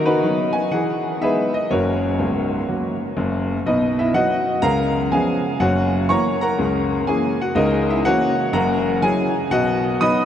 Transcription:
0.00 0.16 D#3 medium
0.00 0.07 D#4 medium
0.00 0.07 F#4 medium
0.00 0.25 A#4 medium
0.06 0.23 D#4 medium
0.06 0.51 F#4 medium
0.06 0.54 B4 medium
0.24 0.51 F#3 soft
0.24 0.51 B3 soft
0.24 0.51 D#4 soft
0.53 0.72 G#5 medium
0.71 1.13 E3 medium
0.71 1.00 G#4 soft
0.71 1.21 F#5 medium
1.21 1.48 G#3 soft
1.21 1.48 B3 soft
1.21 1.49 D#4 medium
1.21 1.52 G#4 medium
1.21 1.53 B4 medium
1.21 1.54 E5 medium
1.54 1.70 D#5 medium
1.71 2.10 F#1 medium
1.71 2.09 F#2 medium
1.71 2.67 F#4 medium
1.71 3.14 A#4 medium
1.71 3.17 C#5 medium
2.19 2.58 C#1 medium
2.19 2.58 C#2 medium
2.68 2.95 F#3 soft
2.68 2.95 A#3 soft
2.68 2.95 F#4 soft
3.17 3.56 F#1 medium
3.17 3.56 F#2 medium
3.66 4.07 B1 medium
3.66 4.07 B2 medium
3.66 3.97 D#4 soft
3.66 3.97 B4 soft
3.66 3.98 D#5 medium
3.99 4.14 E4 medium
3.99 4.15 E5 medium
4.14 4.41 F#3 soft
4.14 4.41 B3 soft
4.14 4.41 D#4 soft
4.14 4.60 F#4 medium
4.14 4.60 D#5 medium
4.14 4.63 F#5 medium
4.62 5.04 C#2 medium
4.62 5.04 C#3 medium
4.62 5.09 A#4 medium
4.62 5.09 F5 medium
4.62 5.11 A#5 loud
5.12 5.39 F3 soft
5.12 5.39 B3 soft
5.12 5.39 C#4 soft
5.12 5.58 G#4 medium
5.12 5.58 F5 medium
5.12 5.61 G#5 medium
5.59 6.02 F#1 medium
5.59 6.02 F#2 medium
5.59 6.07 F#4 medium
5.59 6.07 C#5 medium
5.59 6.09 F#5 medium
6.09 6.36 E3 soft
6.09 6.36 A#3 soft
6.09 6.36 C#4 soft
6.09 6.40 C#5 medium
6.09 6.40 A#5 medium
6.09 6.42 C#6 medium
6.41 7.04 A#4 medium
6.41 7.04 F#5 medium
6.41 7.07 A#5 medium
6.58 7.00 C#2 medium
6.58 7.00 C#3 medium
7.07 7.34 E3 soft
7.07 7.34 A#3 soft
7.07 7.34 C#4 soft
7.07 7.38 G#4 medium
7.07 7.40 G#5 medium
7.41 7.56 F#4 soft
7.41 7.57 F#5 medium
7.55 7.97 C#2 medium
7.55 7.97 C#3 medium
7.55 7.87 D#4 medium
7.55 7.87 A#4 medium
7.55 7.88 D#5 medium
7.90 8.05 E4 medium
7.90 8.06 E5 medium
8.05 8.32 E3 soft
8.05 8.32 A#3 soft
8.05 8.33 C#4 medium
8.05 8.51 F#4 medium
8.05 8.51 C#5 medium
8.05 8.53 F#5 loud
8.53 8.95 F#1 medium
8.53 8.95 F#2 medium
8.53 9.00 A#4 medium
8.53 9.00 F#5 medium
8.53 9.02 A#5 medium
9.02 9.29 F#3 soft
9.02 9.29 C#4 medium
9.02 9.30 E4 soft
9.02 9.49 G#4 medium
9.02 9.51 G#5 medium
9.51 9.92 B1 medium
9.51 9.93 B2 medium
9.51 9.97 F#4 medium
9.51 9.97 D#5 medium
9.51 10.00 F#5 medium
10.01 10.25 F#3 soft
10.01 10.25 B3 medium
10.01 10.25 D#4 medium
10.01 10.25 D#5 medium
10.01 10.25 B5 medium
10.01 10.25 D#6 loud

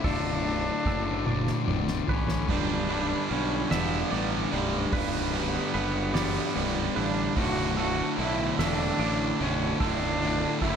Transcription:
0.00 0.43 D2 loud
0.00 0.44 A2 loud
0.00 0.04 A4 medium
0.00 1.27 D5 medium
0.04 0.69 B0 medium
0.04 0.44 D3 loud
0.04 1.68 D4 loud
0.04 0.86 A4 loud
0.04 kick loud
0.04 ride loud
0.44 0.84 D2 loud
0.44 0.84 A2 loud
0.44 0.85 D3 loud
0.44 ride medium
0.85 1.50 F#1 medium
0.85 1.25 D2 medium
0.85 1.25 A2 medium
0.85 1.25 D3 loud
0.85 1.27 A4 medium
0.85 kick medium
0.85 ride medium
1.26 1.65 D2 medium
1.26 1.66 A2 medium
1.26 1.66 D3 loud
1.26 3.74 D5 medium
1.26 high tom medium
1.47 snare medium
1.66 2.00 B0 medium
1.66 2.07 D2 medium
1.66 2.07 A2 medium
1.66 2.08 D3 medium
1.66 mid tom medium
1.87 snare medium
2.08 2.41 A1 loud
2.08 2.47 D2 medium
2.08 2.47 A2 medium
2.08 2.47 D3 medium
2.08 2.51 C#4 medium
2.08 2.50 B4 medium
2.08 floor tom loud
2.28 snare loud
2.48 3.13 B0 medium
2.48 2.88 G2 medium
2.48 2.88 D3 loud
2.48 2.89 G3 loud
2.48 3.34 D4 medium
2.48 kick loud
2.48 crash loud
2.89 3.28 G2 medium
2.89 3.29 D3 medium
2.89 3.30 G3 loud
2.89 4.93 B4 medium
2.89 ride medium
3.29 3.63 B1 medium
3.29 3.69 G2 medium
3.29 3.70 D3 loud
3.29 3.70 G3 loud
3.29 3.73 C#4 medium
3.29 ride medium
3.71 4.04 E1 loud
3.71 4.10 G2 loud
3.71 4.11 D3 loud
3.71 4.11 G3 loud
3.71 4.54 B3 medium
3.71 4.11 E5 loud
3.71 snare loud
3.71 ride loud
4.11 4.44 A1 loud
4.11 4.51 G2 medium
4.11 4.52 D3 loud
4.11 4.52 G3 medium
4.11 6.14 D5 medium
4.11 ride medium
4.52 4.85 B0 loud
4.52 4.92 G2 medium
4.52 4.92 D3 medium
4.52 4.93 G3 loud
4.52 4.93 A3 medium
4.52 ride medium
4.93 5.57 B0 medium
4.93 5.32 G2 medium
4.93 5.33 D3 loud
4.93 5.33 G3 loud
4.93 7.00 B3 medium
4.93 5.73 B4 loud
4.93 kick loud
4.93 ride loud
5.33 5.73 G2 medium
5.33 5.74 D3 loud
5.33 5.74 G3 loud
5.33 ride medium
5.74 6.39 F#1 medium
5.74 6.13 G2 medium
5.74 6.14 D3 loud
5.74 6.14 G3 medium
5.74 6.13 B4 medium
5.74 ride medium
6.14 6.54 G2 medium
6.14 6.55 D3 medium
6.14 6.55 G3 loud
6.14 8.59 D5 medium
6.14 snare loud
6.14 ride loud
6.55 6.88 B0 loud
6.55 6.94 G2 medium
6.55 6.95 D3 loud
6.55 6.95 G3 medium
6.55 ride medium
6.96 7.29 A1 loud
6.96 7.34 G2 medium
6.96 7.35 D3 medium
6.96 7.35 G3 loud
6.96 7.38 D4 loud
6.96 7.37 B4 medium
6.96 ride medium
7.37 8.01 B0 medium
7.37 7.76 D2 loud
7.37 7.77 A2 loud
7.37 7.77 D3 loud
7.37 7.76 F#4 loud
7.37 kick loud
7.37 ride loud
7.77 8.17 D2 loud
7.77 8.18 A2 loud
7.77 8.18 D3 loud
7.77 8.17 F#4 loud
7.77 9.80 A4 medium
7.77 ride medium
8.18 8.50 B1 loud
8.18 8.57 D2 medium
8.18 8.58 A2 loud
8.18 8.59 D3 medium
8.18 8.57 E4 loud
8.18 ride medium
8.59 8.91 E1 loud
8.59 8.98 D2 medium
8.59 8.99 A2 loud
8.59 9.00 D3 loud
8.59 9.44 D4 loud
8.59 9.00 E5 medium
8.59 snare loud
8.59 ride loud
8.99 9.31 A1 loud
8.99 9.39 D2 loud
8.99 9.39 A2 loud
8.99 9.40 D3 loud
8.99 10.76 D6 medium
8.99 ride medium
9.40 9.72 B0 loud
9.40 9.79 D2 medium
9.40 9.79 A2 loud
9.40 9.80 D3 loud
9.40 9.82 C#4 medium
9.40 ride medium
9.80 10.45 B0 medium
9.80 10.19 D2 loud
9.80 10.20 A2 loud
9.80 10.20 D3 loud
9.80 10.59 D4 loud
9.80 10.61 A4 loud
9.80 kick loud
9.80 ride loud
10.20 10.60 D2 medium
10.20 10.61 A2 loud
10.20 10.62 D3 loud
10.20 ride medium
10.62 10.76 F#1 medium
10.62 10.76 D2 medium
10.62 10.76 A2 loud
10.62 10.76 D3 medium
10.62 10.76 E4 loud
10.62 10.76 A4 medium
10.62 kick medium
10.62 ride medium

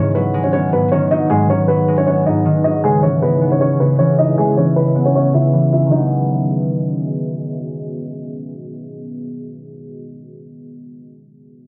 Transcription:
0.00 0.71 G#2 medium
0.00 0.91 D#3 medium
0.00 0.53 B3 medium
0.00 0.11 C#4 medium
0.00 1.89 C#4 medium
0.00 2.81 D#4 medium
0.00 5.88 G#4 medium
0.00 5.88 B4 medium
0.00 0.10 C#5 medium
0.00 2.81 F#5 medium
0.15 0.97 F#3 medium
0.15 0.43 B3 medium
0.15 0.42 B4 medium
0.34 0.97 G#3 loud
0.44 0.51 C#4 medium
0.44 0.51 C#5 medium
0.53 2.07 B3 medium
0.53 0.69 C#4 medium
0.53 0.68 C#5 medium
0.72 1.28 G#2 medium
0.72 0.88 B3 medium
0.72 0.88 B4 medium
0.92 1.48 D#3 medium
0.92 1.07 C#4 medium
0.92 1.07 C#5 medium
1.11 1.54 F#3 medium
1.11 1.27 D#4 medium
1.11 1.26 D#5 medium
1.30 2.25 G#2 loud
1.30 1.46 G#3 medium
1.30 1.45 G#4 medium
1.49 2.44 D#3 medium
1.49 1.65 C#4 medium
1.49 1.65 C#5 medium
1.68 2.50 F#3 medium
1.68 1.96 B3 medium
1.68 1.96 B4 medium
1.88 2.50 G#3 medium
1.98 2.05 C#4 medium
1.98 2.05 C#5 medium
2.07 3.41 B3 medium
2.07 2.22 C#4 medium
2.07 2.22 C#5 medium
2.26 2.89 G#2 medium
2.26 2.63 D#4 medium
2.26 2.62 D#5 medium
2.45 2.89 D#3 medium
2.64 2.89 F#3 medium
2.64 2.80 D#4 medium
2.64 2.80 D#5 medium
2.84 3.79 C#3 medium
2.84 2.99 G#3 medium
2.84 5.88 C#4 medium
2.84 2.99 G#4 loud
2.84 5.89 E5 medium
3.03 3.85 E3 medium
3.03 3.19 C#4 medium
3.03 3.18 C#5 medium
3.22 4.17 G#3 medium
3.22 3.50 B3 medium
3.22 3.50 B4 medium
3.41 4.95 B3 medium
3.52 3.59 C#4 medium
3.52 3.59 C#5 medium
3.61 5.14 C#4 medium
3.61 3.76 C#4 medium
3.61 3.76 C#5 medium
3.80 4.36 C#3 medium
3.80 3.96 B3 medium
3.80 3.95 B4 medium
3.99 4.43 E3 medium
3.99 4.15 C#4 medium
3.99 4.14 C#5 medium
4.19 4.75 G#3 medium
4.19 4.34 D#4 medium
4.19 4.34 D#5 medium
4.38 5.32 C#3 medium
4.38 4.54 G#3 medium
4.38 4.53 G#4 loud
4.57 5.39 E3 medium
4.57 4.73 C#4 medium
4.57 4.72 C#5 medium
4.76 5.71 G#3 medium
4.76 5.04 B3 medium
4.76 5.04 B4 medium
4.95 5.97 B3 medium
5.06 5.13 C#4 medium
5.06 5.13 C#5 medium
5.15 8.04 C#4 medium
5.15 5.31 C#4 medium
5.15 5.30 C#5 medium
5.34 5.97 C#3 medium
5.34 5.70 E4 medium
5.34 5.70 E5 medium
5.53 5.97 E3 medium
5.72 5.92 G#3 medium
5.72 5.88 E4 medium
5.72 5.88 E5 medium
5.86 10.42 D#3 medium
5.86 10.44 F#3 medium
5.92 10.46 G#3 medium
5.92 9.75 B3 medium
5.92 7.03 D#4 medium
5.92 9.75 F#4 medium
5.92 9.75 G#4 medium
5.92 9.75 D#5 medium
5.98 10.48 B3 medium

